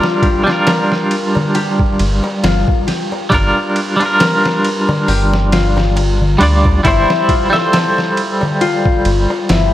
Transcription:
Already playing: clean electric guitar G3 D4 F4 A#4, harp F4
0.03 snare, darbuka tek
0.22 harp G4, kick, ride
0.44 clean electric guitar G3 D4, darbuka tek
0.48 clean electric guitar F4, snare
0.52 clean electric guitar A#4
0.67 harp A#4, snare, ride, darbuka tek
0.92 snare, darbuka tek
1.11 ride
1.35 darbuka tek, darbuka dum
1.54 harp G4, ride, darbuka tek
1.79 kick, darbuka tek
1.99 analog synth bass G1, ride
2.24 darbuka tek
2.43 analog synth bass G1, harp F4, snare, ride, darbuka tek
2.68 kick, darbuka tek
2.87 harp G4, snare, ride
3.12 darbuka tek
3.30 analog synth bass G1, clean electric guitar G3 D4 F4, kick, ride, darbuka tek
3.34 clean electric guitar A#4
3.56 darbuka tek
3.76 ride
3.96 clean electric guitar G3 D4
4.01 clean electric guitar F4, ride, darbuka tek
4.05 clean electric guitar A#4
4.20 harp A#4, snare, ride, darbuka tek
4.45 snare, darbuka tek
4.65 ride
4.89 darbuka tek, darbuka dum
5.08 analog synth bass G1, harp G4, open hi-hat, darbuka tek
5.33 snare, darbuka tek
5.52 harp F4, snare, ride
5.77 snare, darbuka tek, darbuka dum
5.96 ride, darbuka tek
6.22 darbuka tek, darbuka dum
6.38 analog synth bass D2, clean electric guitar G3 D4 F4, ride
6.43 clean electric guitar D5
6.65 kick, darbuka tek
6.83 analog synth bass G1, clean electric guitar G3 E4, harp E4, kick, ride, darbuka tek
6.88 clean electric guitar C5
7.10 snare, darbuka tek
7.29 harp F4, kick, ride
7.50 clean electric guitar G3 E5, darbuka tek
7.54 clean electric guitar A4, snare
7.58 clean electric guitar C5
7.73 harp A4, snare, ride, darbuka tek
7.98 snare, darbuka tek
8.17 ride
8.41 darbuka tek, darbuka dum
8.61 harp F4, ride, darbuka tek
8.86 kick, darbuka tek
9.05 analog synth bass G1, ride
9.30 darbuka tek
9.49 analog synth bass G1, harp E4, snare, ride, darbuka tek

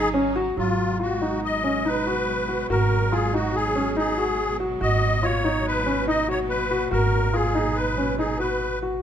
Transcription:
Already playing: upright bass G#1, string section C#3 F#3 D#4
0.14 grand piano C#4
0.36 grand piano F#4
0.57 upright bass G#1, string section B2 F#3 G#3, grand piano F#3, accordion F4
0.99 grand piano F4, accordion F#4
1.21 grand piano D#4
1.45 accordion D#5
1.64 grand piano C#4
1.85 grand piano D#4, accordion B4
2.07 grand piano F#4
2.48 grand piano F#4
2.70 upright bass G#1, grand piano F#4, accordion A#4
3.12 grand piano F4, accordion G#4
3.34 grand piano D#4, accordion F#4
3.55 accordion G#4
3.75 grand piano C#4
3.96 grand piano D#4, accordion G#4
4.18 grand piano F#4
4.60 grand piano F#4
4.80 upright bass G#1, string section A#2, grand piano F#4, accordion D#5
5.23 grand piano F4, accordion C#5
5.44 grand piano D#4
5.67 accordion B4
5.86 grand piano C#4
6.07 grand piano D#4, accordion D#5
6.28 grand piano F#4, accordion C#5
6.49 accordion B4
6.71 grand piano F#4
6.91 upright bass G#1, grand piano F#4, accordion A#4
7.33 grand piano F4, accordion G#4
7.55 grand piano D#4
7.75 accordion B4
7.98 grand piano C#4
8.18 grand piano D#4, accordion G#4
8.39 grand piano F#4, accordion B4
8.82 grand piano F#4

